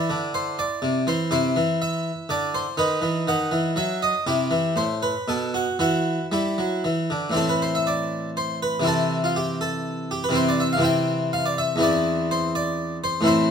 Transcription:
harpsichord
Already playing: E4 D5
0.10 D3
0.34 C5
0.59 D5
0.82 C3
1.07 E3 C5
1.31 C3 E4 C5
1.56 E3
1.82 E5
2.29 D3 D5
2.55 C5
2.77 D#3 D#4 B4
3.02 E3
3.27 D#3 F#5
3.52 E3
3.76 F#3 E5
4.02 D#5
4.27 C3 E4 G4
4.51 E3
4.76 A2 C5
5.03 B4
5.28 B2 A4
5.54 F#4
5.79 E3 E4 F#4
6.32 G3 E4
6.58 F#3
6.84 E3
7.10 D3
7.30 A2 E3 C4
7.34 E4 A4
7.49 B4
7.62 C5
7.75 E5
7.87 D5
8.37 C5
8.63 B4
8.80 C3 E3 C4
8.85 E4 A4
9.24 F4
9.36 G4
9.61 A4
10.11 G4
10.24 B4
10.29 C3 E3 C4
10.34 E4 C5
10.49 D5
10.60 E5
10.73 F5
10.77 C3 E3 C4
10.82 E4 G5
11.33 F5
11.46 D5
11.58 E5
11.76 E2 E3 C4
11.81 E4 D5
12.31 C5
12.55 D5
13.04 C5
13.21 A2 E3 C4
13.25 E4 C5

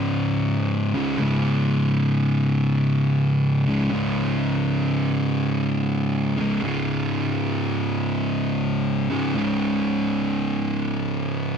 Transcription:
distorted electric guitar
Already playing: C#2 G#2 C#3
0.94 C#2 G#2 C#3
1.19 C#2 G#2 C#3
3.65 G#2 C#3
3.69 C#2
3.90 C#2 G#2 C#3
6.37 G#2 C#3
6.41 C#2
6.62 C#2 G#2
6.66 C#3
9.10 C#2 G#2 C#3
9.35 C#2 G#2 C#3

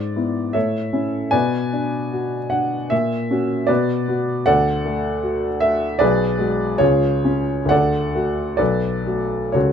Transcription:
upright piano
Already playing: G#2 D5
0.16 B3 E4
0.53 A2 A4 C#5 E5
0.93 C#4 E4
1.31 B2 B4 D5 G#5
1.73 D4
2.13 F#4
2.50 D4 F#5
2.90 A#2 E5
3.31 C#4 F#4
3.67 B2 F#4 B4 D5
4.08 B3 F#4
4.46 D2 A4 D5 F#5
4.86 A3
5.23 F#4
5.60 A3 E5
5.99 B1 G#4 B4 D5
6.39 G#3 F#4
6.78 C#2 F4 G#4 C#5
7.25 C#4 F4
7.66 D2 F#5
7.70 A4 D5
8.15 A3 F#4
8.57 B1 A4 B4 D5
9.06 A3 F#4
9.52 C#2 F#4 A4 C#5

